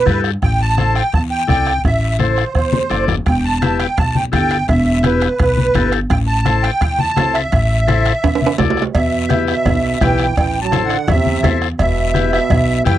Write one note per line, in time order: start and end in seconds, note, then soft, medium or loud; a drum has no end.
0.00 0.21 B4 loud
0.05 0.35 G2 medium
0.05 0.31 E4 medium
0.05 0.31 G4 medium
0.05 0.31 A4 medium
0.05 bombo low medium
0.05 bombo rim medium
0.05 high conga medium
0.05 short guiro medium
0.24 bombo rim medium
0.24 short guiro medium
0.42 0.99 A1 medium
0.42 0.61 G5 medium
0.42 bombo low medium
0.42 bombo rim medium
0.42 long guiro medium
0.61 0.94 A5 medium
0.78 1.02 E4 medium
0.78 1.03 A4 medium
0.78 1.03 C5 medium
0.78 bombo rim medium
0.78 high conga medium
0.78 short guiro medium
0.95 1.14 G5 medium
0.95 bombo rim medium
0.95 short guiro medium
1.12 1.42 E2 medium
1.12 1.22 A5 medium
1.12 bombo low medium
1.12 bombo rim medium
1.12 long guiro medium
1.31 1.47 G5 medium
1.47 1.77 C2 medium
1.47 1.73 E4 medium
1.47 1.73 A4 medium
1.47 1.73 D5 medium
1.47 1.82 G5 loud
1.47 bombo low medium
1.47 bombo rim medium
1.47 high conga medium
1.47 short guiro medium
1.66 bombo rim medium
1.66 short guiro medium
1.84 2.41 A1 medium
1.84 2.18 E5 medium
1.84 bombo low medium
1.84 bombo rim medium
1.84 long guiro medium
2.19 2.44 E4 medium
2.19 2.45 A4 medium
2.19 2.45 C5 medium
2.19 2.53 C5 medium
2.19 bombo rim medium
2.19 high conga medium
2.19 short guiro medium
2.36 bombo rim medium
2.36 short guiro medium
2.55 2.84 E2 medium
2.55 3.05 C5 medium
2.55 bombo low medium
2.55 bombo rim medium
2.55 long guiro medium
2.73 high conga loud
2.90 3.19 F#1 medium
2.90 3.15 E4 medium
2.90 3.15 A4 medium
2.90 3.16 D5 medium
2.90 bombo rim medium
2.90 short guiro medium
3.08 bombo rim medium
3.08 low conga medium
3.08 short guiro medium
3.26 3.83 E1 medium
3.26 3.45 G5 medium
3.26 bombo low medium
3.26 bombo rim medium
3.26 high timbale medium
3.26 long guiro medium
3.45 3.77 A5 medium
3.62 3.87 E4 medium
3.62 3.87 G4 medium
3.62 3.87 B4 medium
3.62 bombo rim medium
3.62 high conga medium
3.62 high timbale medium
3.62 short guiro medium
3.80 3.98 G5 medium
3.80 bombo rim medium
3.80 high timbale medium
3.80 short guiro medium
3.97 4.26 B1 medium
3.97 4.16 A5 loud
3.97 bombo low medium
3.97 bombo rim medium
3.97 high timbale medium
3.97 long guiro medium
4.15 4.24 G5 medium
4.15 high conga medium
4.32 4.62 G1 medium
4.32 4.57 E4 medium
4.32 4.58 G4 medium
4.32 4.58 A4 medium
4.32 4.67 G5 loud
4.32 bombo low medium
4.32 bombo rim medium
4.32 high conga medium
4.32 high timbale medium
4.32 short guiro medium
4.49 bombo rim medium
4.49 high timbale medium
4.49 short guiro medium
4.68 5.26 E1 loud
4.68 5.05 E5 medium
4.68 bombo low medium
4.68 bombo rim medium
4.68 high timbale medium
4.68 long guiro medium
5.03 5.28 E4 medium
5.03 5.29 G4 medium
5.03 5.29 B4 medium
5.03 5.40 B4 medium
5.03 bombo rim medium
5.03 high conga medium
5.03 high timbale medium
5.03 short guiro medium
5.20 bombo rim medium
5.20 high timbale medium
5.20 short guiro medium
5.39 5.68 B1 medium
5.39 5.90 B4 medium
5.39 bombo low medium
5.39 bombo rim medium
5.39 high timbale medium
5.39 long guiro medium
5.57 high conga medium
5.74 6.03 G1 medium
5.74 6.00 E4 medium
5.74 6.00 G4 medium
5.74 6.00 A4 medium
5.74 bombo low medium
5.74 bombo rim medium
5.74 high conga medium
5.74 high timbale medium
5.74 short guiro medium
5.91 bombo rim medium
5.91 high timbale medium
5.91 short guiro medium
6.10 6.67 A1 loud
6.10 6.18 G5 medium
6.10 bombo low medium
6.10 bombo rim medium
6.10 high timbale medium
6.10 long guiro medium
6.27 6.64 A5 medium
6.45 6.70 E4 medium
6.45 6.71 A4 medium
6.45 6.71 C5 medium
6.45 bombo rim medium
6.45 high conga medium
6.45 high timbale medium
6.45 short guiro medium
6.63 7.00 G5 loud
6.63 bombo rim medium
6.63 high timbale medium
6.63 short guiro medium
6.81 7.10 E2 medium
6.81 bombo low medium
6.81 bombo rim medium
6.81 high timbale medium
6.81 long guiro medium
6.99 7.36 A5 loud
6.99 high conga medium
7.16 7.46 C2 medium
7.16 7.42 E4 medium
7.16 7.42 A4 medium
7.16 7.42 C5 medium
7.16 bombo rim medium
7.16 high conga medium
7.16 high timbale medium
7.16 low timbale medium
7.16 short guiro medium
7.34 8.55 E5 medium
7.34 bombo rim medium
7.34 high timbale medium
7.34 short guiro medium
7.52 8.10 A1 loud
7.52 bombo low medium
7.52 bombo rim medium
7.52 high timbale medium
7.52 long guiro medium
7.87 8.13 E4 medium
7.87 8.13 A4 medium
7.87 8.13 C5 medium
7.87 bombo rim medium
7.87 high conga medium
7.87 high timbale medium
7.87 short guiro medium
8.05 bombo rim medium
8.05 high timbale medium
8.05 short guiro medium
8.23 8.52 E2 medium
8.23 bombo low medium
8.23 bombo rim medium
8.23 high timbale medium
8.23 long guiro medium
8.35 high timbale medium
8.42 high conga medium
8.46 high timbale loud
8.58 8.88 C2 medium
8.58 8.84 E4 medium
8.58 8.84 A4 medium
8.58 8.84 D5 medium
8.58 bombo low medium
8.58 bombo rim medium
8.58 high conga medium
8.58 low timbale medium
8.58 short guiro medium
8.70 low timbale medium
8.77 bombo rim medium
8.77 short guiro medium
8.82 low timbale medium
8.94 9.52 E2 medium
8.94 9.45 B2 medium
8.94 9.44 E5 medium
8.94 bombo low medium
8.94 bombo rim medium
8.94 cowbell loud
8.94 long guiro medium
9.29 9.55 E4 medium
9.29 9.55 G4 medium
9.29 9.55 B4 medium
9.29 bombo rim medium
9.29 cowbell medium
9.29 high conga medium
9.29 short guiro medium
9.48 9.98 B2 medium
9.48 10.04 E5 medium
9.48 bombo rim medium
9.48 short guiro medium
9.65 9.94 B1 medium
9.65 bombo low medium
9.65 bombo rim medium
9.65 cowbell medium
9.65 low conga medium
9.65 long guiro medium
10.01 10.30 B1 medium
10.01 10.35 E3 medium
10.01 10.26 E4 medium
10.01 10.26 G4 medium
10.01 10.27 B4 medium
10.01 10.36 G5 medium
10.01 bombo low medium
10.01 bombo rim medium
10.01 cowbell medium
10.01 high conga medium
10.01 low timbale medium
10.01 short guiro medium
10.18 bombo rim medium
10.18 short guiro medium
10.36 10.94 A1 medium
10.36 10.59 E3 medium
10.36 10.60 G5 medium
10.36 bombo low medium
10.36 bombo rim medium
10.36 cowbell loud
10.36 long guiro medium
10.61 10.84 F#3 medium
10.61 10.85 A5 medium
10.72 10.97 E4 medium
10.72 10.97 A4 medium
10.72 10.98 C5 medium
10.72 bombo rim medium
10.72 cowbell medium
10.72 high conga medium
10.72 short guiro medium
10.85 11.07 D3 medium
10.85 11.09 F#5 medium
10.90 bombo rim medium
10.90 short guiro medium
11.07 11.37 E2 medium
11.07 11.59 C3 medium
11.07 11.58 E5 loud
11.07 bombo low medium
11.07 bombo rim medium
11.07 cowbell medium
11.07 low conga medium
11.07 long guiro medium
11.26 high conga medium
11.43 11.72 E2 medium
11.43 11.68 E4 medium
11.43 11.68 A4 medium
11.43 11.69 C5 medium
11.43 bombo rim medium
11.43 cowbell medium
11.43 high conga medium
11.43 low timbale medium
11.43 short guiro medium
11.62 bombo rim medium
11.62 short guiro medium
11.79 12.36 E1 medium
11.79 12.30 B2 medium
11.79 12.31 E5 medium
11.79 bombo low medium
11.79 bombo rim medium
11.79 cowbell loud
11.79 long guiro medium
12.14 12.39 E4 medium
12.14 12.39 G4 medium
12.14 12.40 B4 medium
12.14 bombo rim medium
12.14 cowbell medium
12.14 high conga medium
12.14 short guiro medium
12.33 12.82 B2 medium
12.33 12.82 E5 loud
12.33 bombo rim medium
12.33 short guiro medium
12.50 12.79 B1 medium
12.50 bombo low medium
12.50 bombo rim medium
12.50 cowbell medium
12.50 low conga medium
12.50 long guiro medium
12.85 12.98 F#2 medium
12.85 12.98 E3 medium
12.85 12.98 E4 medium
12.85 12.98 G4 medium
12.85 12.98 B4 medium
12.85 12.98 G5 medium
12.85 bombo rim medium
12.85 cowbell medium
12.85 high conga medium
12.85 short guiro medium